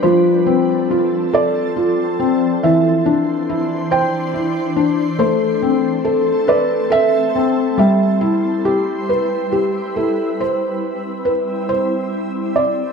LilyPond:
<<
  \new Staff \with { instrumentName = "Felt piano" } { \time 6/8 \key c \major \tempo 4. = 46 << { c''4. d''4. | e''4. g''4 r8 | c''4. d''8 e''4 | e''2 r8 a'8 |
c''4 b'8 c''4 d''8 | } \\ { f8 c'8 f'8 a'8 f'8 c'8 | e8 d'8 e'8 c''8 e'8 d'8 | a8 c'8 a'8 b'8 a'8 c'8 | g8 e'8 g'8 b'8 g'8 e'8 |
r2. | } >> }
  \new Staff \with { instrumentName = "Ambient pad" } { \time 6/8 \key c \major <f c' a'>2. | <e d' c''>2. | <a c' a'>2. | <g e'>2. |
<g c' e'>2. | }
>>